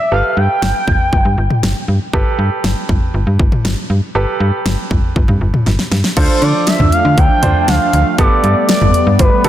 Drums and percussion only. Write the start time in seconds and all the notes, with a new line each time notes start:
0.62 snare
0.87 kick, mid tom
1.13 kick
1.50 mid tom
1.63 snare
2.13 kick
2.64 snare
2.89 kick, mid tom
3.39 kick
3.52 mid tom
3.65 snare
4.66 snare
4.91 kick, mid tom
5.16 kick
5.28 mid tom
5.54 mid tom
5.66 snare
5.79 snare
5.92 snare
6.04 snare
6.17 kick, closed hi-hat, crash
6.42 closed hi-hat
6.67 snare, closed hi-hat
6.80 mid tom
6.92 closed hi-hat
7.18 kick, closed hi-hat
7.43 closed hi-hat, mid tom
7.68 snare, closed hi-hat
7.93 closed hi-hat
8.18 kick, closed hi-hat
8.44 closed hi-hat
8.69 snare, closed hi-hat
8.81 mid tom
8.94 closed hi-hat
9.19 kick, closed hi-hat
9.44 kick, closed hi-hat, mid tom